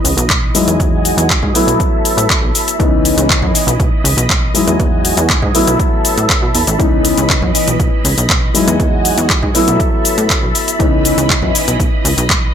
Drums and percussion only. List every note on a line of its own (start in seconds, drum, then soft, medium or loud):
0.05 open hi-hat loud
0.05 shaker medium
0.18 closed hi-hat medium
0.18 shaker soft
0.30 kick loud
0.30 clap loud
0.30 closed hi-hat medium
0.30 shaker soft
0.55 open hi-hat medium
0.55 shaker medium
0.68 closed hi-hat medium
0.68 shaker soft
0.80 kick loud
0.80 closed hi-hat medium
0.80 shaker soft
1.05 open hi-hat loud
1.05 shaker medium
1.18 closed hi-hat medium
1.18 shaker soft
1.30 kick loud
1.30 clap loud
1.30 closed hi-hat medium
1.30 shaker soft
1.43 kick medium
1.55 open hi-hat loud
1.55 shaker medium
1.68 closed hi-hat medium
1.68 shaker soft
1.80 kick loud
1.80 closed hi-hat medium
1.80 shaker soft
2.05 open hi-hat loud
2.05 shaker medium
2.18 closed hi-hat medium
2.18 shaker soft
2.30 kick loud
2.30 clap loud
2.30 closed hi-hat medium
2.30 shaker soft
2.55 open hi-hat medium
2.55 shaker medium
2.68 closed hi-hat medium
2.68 shaker soft
2.80 kick loud
2.80 closed hi-hat soft
2.80 shaker soft
3.05 open hi-hat loud
3.05 shaker medium
3.18 closed hi-hat medium
3.18 shaker soft
3.30 kick loud
3.30 clap loud
3.30 closed hi-hat medium
3.30 shaker soft
3.42 kick medium
3.55 open hi-hat loud
3.55 shaker medium
3.68 closed hi-hat medium
3.68 shaker soft
3.80 kick loud
3.80 closed hi-hat medium
3.80 shaker soft
4.05 open hi-hat loud
4.05 shaker medium
4.18 closed hi-hat medium
4.18 shaker soft
4.30 kick loud
4.30 clap loud
4.30 closed hi-hat medium
4.30 shaker soft
4.55 open hi-hat loud
4.55 shaker medium
4.68 closed hi-hat medium
4.68 shaker soft
4.80 kick loud
4.80 closed hi-hat soft
4.80 shaker soft
5.05 open hi-hat loud
5.05 shaker medium
5.17 closed hi-hat medium
5.17 shaker soft
5.30 kick loud
5.30 clap loud
5.30 closed hi-hat medium
5.30 shaker soft
5.42 kick medium
5.55 open hi-hat medium
5.55 shaker medium
5.67 closed hi-hat medium
5.67 shaker soft
5.80 kick loud
5.80 closed hi-hat medium
5.80 shaker soft
6.05 open hi-hat loud
6.05 shaker medium
6.18 closed hi-hat medium
6.18 shaker soft
6.30 kick loud
6.30 clap loud
6.30 closed hi-hat soft
6.30 shaker soft
6.55 open hi-hat medium
6.55 shaker medium
6.67 closed hi-hat medium
6.67 shaker soft
6.80 kick loud
6.80 closed hi-hat soft
6.80 shaker soft
7.05 open hi-hat loud
7.05 shaker medium
7.18 closed hi-hat medium
7.18 shaker soft
7.30 kick loud
7.30 clap loud
7.30 closed hi-hat medium
7.30 shaker soft
7.42 kick medium
7.55 open hi-hat medium
7.55 shaker medium
7.68 closed hi-hat medium
7.68 shaker soft
7.80 kick loud
7.80 closed hi-hat medium
7.80 shaker soft
8.05 open hi-hat loud
8.05 shaker medium
8.18 closed hi-hat medium
8.18 shaker soft
8.30 kick loud
8.30 clap loud
8.30 closed hi-hat soft
8.30 shaker soft
8.55 open hi-hat medium
8.55 shaker medium
8.68 closed hi-hat medium
8.68 shaker soft
8.80 kick loud
8.80 closed hi-hat medium
8.80 shaker soft
9.05 open hi-hat loud
9.05 shaker medium
9.18 closed hi-hat medium
9.18 shaker soft
9.30 kick loud
9.30 clap loud
9.30 closed hi-hat medium
9.30 shaker soft
9.43 kick medium
9.55 open hi-hat medium
9.55 shaker medium
9.68 closed hi-hat medium
9.68 shaker soft
9.80 kick loud
9.80 closed hi-hat medium
9.80 shaker soft
10.05 open hi-hat loud
10.05 shaker medium
10.18 closed hi-hat medium
10.18 shaker soft
10.30 kick loud
10.30 clap loud
10.30 closed hi-hat medium
10.30 shaker soft
10.55 open hi-hat medium
10.55 shaker medium
10.68 closed hi-hat medium
10.68 shaker soft
10.80 kick loud
10.80 closed hi-hat medium
10.80 shaker soft
11.05 open hi-hat loud
11.05 shaker medium
11.18 closed hi-hat medium
11.18 shaker soft
11.30 kick loud
11.30 clap loud
11.30 closed hi-hat medium
11.30 shaker soft
11.42 kick medium
11.55 open hi-hat medium
11.55 shaker medium
11.68 closed hi-hat medium
11.68 shaker soft
11.80 kick loud
11.80 closed hi-hat medium
11.80 shaker soft
12.05 open hi-hat loud
12.05 shaker medium
12.18 closed hi-hat medium
12.18 shaker soft
12.30 kick loud
12.30 clap loud
12.30 closed hi-hat medium
12.30 shaker soft